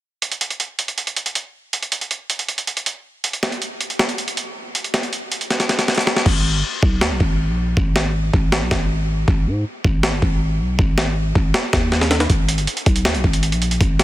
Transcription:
0.22 closed hi-hat
0.32 closed hi-hat
0.41 closed hi-hat
0.50 closed hi-hat
0.60 closed hi-hat
0.79 closed hi-hat
0.88 closed hi-hat
0.98 closed hi-hat
1.07 closed hi-hat
1.16 closed hi-hat
1.26 closed hi-hat
1.35 closed hi-hat
1.73 closed hi-hat
1.82 closed hi-hat
1.92 closed hi-hat
2.01 closed hi-hat
2.11 closed hi-hat
2.30 closed hi-hat
2.39 closed hi-hat
2.48 closed hi-hat
2.58 closed hi-hat
2.67 closed hi-hat
2.77 closed hi-hat
2.86 closed hi-hat
3.24 closed hi-hat
3.33 closed hi-hat
3.43 snare, closed hi-hat
3.52 closed hi-hat
3.62 closed hi-hat
3.81 closed hi-hat
3.90 closed hi-hat
3.99 snare, closed hi-hat
4.09 closed hi-hat
4.18 closed hi-hat
4.28 closed hi-hat
4.37 closed hi-hat
4.75 closed hi-hat
4.84 closed hi-hat
4.94 snare, closed hi-hat
5.03 closed hi-hat
5.13 closed hi-hat
5.32 closed hi-hat
5.41 closed hi-hat
5.50 snare, closed hi-hat
5.60 snare, closed hi-hat
5.69 snare, closed hi-hat
5.79 snare, closed hi-hat
5.88 snare, closed hi-hat
5.94 snare, closed hi-hat
6.01 closed hi-hat
6.07 snare
6.16 snare
6.26 G#1, kick, crash
6.54 G1
6.83 B1, kick
7.01 D#2, snare
7.11 B1
7.20 G#1, kick
7.49 A#1
7.77 G#1, kick
7.96 snare
8.34 G#1, kick
8.52 snare
8.62 B1
8.71 G#1, kick, snare
9.28 G#1, kick
9.47 G#2
9.84 G#1, kick
10.03 snare
10.13 G1
10.22 G#1, kick
10.60 B1
10.79 G#1, kick
10.98 snare
11.35 G#1, kick
11.54 snare
11.73 D#2, kick, snare
11.92 snare
12.01 snare
12.11 snare
12.20 snare
12.30 G#1, kick, closed hi-hat
12.48 closed hi-hat
12.58 G1, closed hi-hat
12.67 closed hi-hat
12.77 closed hi-hat
12.86 B1, kick, closed hi-hat
12.96 closed hi-hat
13.05 D#2, snare, closed hi-hat
13.15 B1, closed hi-hat
13.24 G#1, kick
13.33 closed hi-hat
13.43 closed hi-hat
13.52 A#1, closed hi-hat
13.62 closed hi-hat
13.71 closed hi-hat
13.81 G#1, kick, closed hi-hat
13.99 snare, closed hi-hat

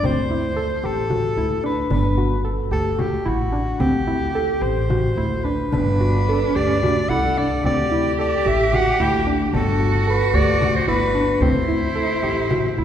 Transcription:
0.03 D2 C4 C5, frame drum
0.31 E4
0.56 A4
0.83 A1 G4 A4, frame drum
1.10 F#4, frame drum
1.37 D2 E4
1.64 D4 B4
1.90 G1 D4 B4, frame drum
2.18 F#4
2.45 A4
2.71 D2 G4 A4, frame drum
2.98 F#4 G4, frame drum
3.26 A1 E4 F#4
3.52 D4
3.80 D2 C4 G4, frame drum
4.07 E4
4.35 A4
4.62 A1 G4 C5, frame drum
4.90 F#4, frame drum
5.16 D2 E4
5.44 D4 B4
5.72 G1 D4 B4, frame drum
6.01 F#4
6.29 A4
6.55 D2 G4 D5, frame drum
6.83 F#4, frame drum
7.09 C2 E4 A4 F#5
7.37 D4 D5
7.64 D2 C4 G4 D5, frame drum
7.91 E4
8.19 A4 D5
8.46 A1 G4 E5, frame drum
8.73 F#4 F#5, frame drum
9.00 D2 E4 G5
9.27 D4
9.53 G1 D4 F#4 A4, frame drum
9.80 F#4
10.07 A4 B4
10.34 D2 G4 D5
10.61 F#4, frame drum
10.75 C5
10.88 G1 E4 B4
11.15 D4
11.40 D2 C4 E4 C5, frame drum
11.68 E4, frame drum
11.95 A4
12.23 A1 G4
12.51 F#4, frame drum
12.78 D2 E4

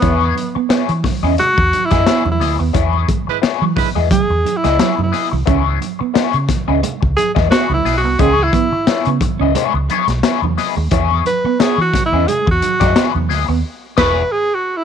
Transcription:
Already playing: B3
0.01 E2 E3 B3 E4 G#4 C#5, kick, closed hi-hat, muted conga
0.21 muted conga
0.35 muted clean electric guitar stroke, closed hi-hat, high conga
0.55 B3, muted clean electric guitar stroke, muted fingered electric bass stroke
0.69 B3 E4 G#4 C#5, muted fingered electric bass stroke, snare, closed hi-hat
0.89 E3, muted clean electric guitar stroke, closed hi-hat, muted conga
1.04 muted clean electric guitar stroke, kick, snare, open hi-hat, high conga, low conga
1.23 E2 B3 C#4 E4 G#4 D#5
1.37 G#3 F#4, muted clean electric guitar stroke, closed hi-hat, muted conga, low conga
1.56 E2, muted clean electric guitar stroke, kick
1.73 muted clean electric guitar stroke, closed hi-hat, high conga
1.86 E4
1.91 F#2 G#3 B3 E4 G#4 D#5, kick, snare, closed hi-hat
2.06 B3 E4 G#4 C#5, snare, closed hi-hat
2.25 E2, muted clean electric guitar stroke, muted conga, high conga, low conga
2.32 E4
2.40 D2 B3 E4 G#4 D#5, muted clean electric guitar stroke, snare, open hi-hat
2.59 D#2 B3, muted clean electric guitar stroke
2.73 E2 E3 B3 E4 G#4 C#5, kick, closed hi-hat
2.93 muted clean electric guitar stroke, muted conga
3.08 G#3, kick, closed hi-hat, high conga
3.27 G#3 E4 B4, muted clean electric guitar stroke, muted fingered electric bass stroke
3.42 B3 E4 G#4 C#5, muted fingered electric bass stroke, snare, closed hi-hat
3.62 E3 F#3, muted conga
3.76 G#3 E4 B4, muted clean electric guitar stroke, kick, open hi-hat, high conga, low conga
3.95 E2 G#3 B3 E4 G#4 D#5
4.11 F#3 G#4, muted clean electric guitar stroke, kick, closed hi-hat, low conga
4.30 E2, muted clean electric guitar stroke, muted conga
4.45 muted clean electric guitar stroke, closed hi-hat, high conga
4.57 E4
4.64 C#2 G#3 B3 E4 G#4 D#5, snare, closed hi-hat
4.79 F#3 B3 E4 G#4 C#5, muted fingered electric bass stroke, snare, closed hi-hat, high conga
4.98 F#2, muted clean electric guitar stroke, muted conga, high conga, low conga
5.03 E4
5.12 B3 E4 G#4 D#5, snare, open hi-hat
5.31 C2 E3, muted clean electric guitar stroke
5.46 C#2 B3 C#4 E4 G#4 C#5, kick, closed hi-hat, muted conga
5.80 muted clean electric guitar stroke, closed hi-hat, high conga
5.99 B3, muted clean electric guitar stroke, muted fingered electric bass stroke
6.14 B3 E4 G#4 C#5, muted fingered electric bass stroke, snare, closed hi-hat, muted conga
6.33 C#3, muted clean electric guitar stroke, closed hi-hat
6.48 muted clean electric guitar stroke, kick, snare, closed hi-hat, high conga, low conga
6.68 C#2 B3 C#4 E4 G#4 D#5
6.83 G#3, muted clean electric guitar stroke, closed hi-hat, muted conga, low conga
7.01 C#2, muted clean electric guitar stroke, kick, muted conga
7.16 G#4, muted clean electric guitar stroke, closed hi-hat, high conga
7.35 E2 G#3 B3 E4 G#4 D#5, kick, snare
7.50 B3 E4 F#4 G#4 C#5, snare, closed hi-hat
7.69 C#2, muted clean electric guitar stroke, muted conga, high conga, low conga
7.74 E4
7.85 B1 B3 E4 G#4 D#5, muted clean electric guitar stroke, snare, open hi-hat
7.97 F#4
8.03 C2 B3, muted clean electric guitar stroke
8.19 C#2 A#3 C#4 D#4 G4 G#4 C5, kick, closed hi-hat, muted conga
8.32 B3 E4 G#4 C#5
8.38 muted clean electric guitar stroke, muted conga
8.43 E4
8.53 B3, kick, closed hi-hat, high conga
8.72 muted fingered electric bass stroke, muted clean electric guitar stroke
8.87 B3 E4 G#4 C#5, muted fingered electric bass stroke, snare, closed hi-hat, muted conga
9.05 C#3 B3, closed hi-hat, muted conga
9.21 muted clean electric guitar stroke, kick, closed hi-hat, high conga, low conga
9.40 C#2 B3 C#4 E4 G#4 D#5
9.55 G#3 B3 E4 G#4 C#5, closed hi-hat, low conga
9.74 C#2, muted clean electric guitar stroke, muted conga
9.89 B3 E4 G#4 C#5, muted clean electric guitar stroke, closed hi-hat, high conga
10.08 B1 G#3, muted clean electric guitar stroke, snare, closed hi-hat
10.23 B3 E4 G#4 C#5, snare, closed hi-hat, muted conga
10.42 E2, muted clean electric guitar stroke, high conga, low conga
10.57 B3 E4 G#4 D#5, snare, open hi-hat
10.76 D#2 G#3, muted clean electric guitar stroke
10.91 E2 E3 B3 E4 G#4 C#5, kick, closed hi-hat
11.11 muted conga
11.25 B4, muted clean electric guitar stroke, closed hi-hat, high conga
11.44 B3, muted fingered electric bass stroke, muted clean electric guitar stroke
11.60 B3 E4 G#4 C#5, muted fingered electric bass stroke, snare, closed hi-hat
11.78 E3 F#4, muted clean electric guitar stroke
11.94 muted clean electric guitar stroke, kick, snare, closed hi-hat, high conga, low conga
12.06 E4
12.12 E2 B3 C#4 E4 G#4 D#5
12.27 G#3 G#4, muted clean electric guitar stroke, closed hi-hat, muted conga, low conga
12.46 E2, muted clean electric guitar stroke, kick
12.51 F#4
12.62 muted clean electric guitar stroke, closed hi-hat, high conga
12.80 F#2 G#3 B3 E4 G#4 D#5, kick, snare, closed hi-hat
12.96 B3 E4 G#4 C#5, snare, closed hi-hat, muted conga
13.14 E2, muted clean electric guitar stroke, high conga, low conga
13.29 D2 B3 E4 G#4 D#5, muted clean electric guitar stroke, snare, open hi-hat
13.48 D#2 B3, muted clean electric guitar stroke
13.97 E1 G#3 B3 E4 G#4 B4 C#5, kick, snare, crash
14.32 G#4
14.55 F#4
14.77 E4

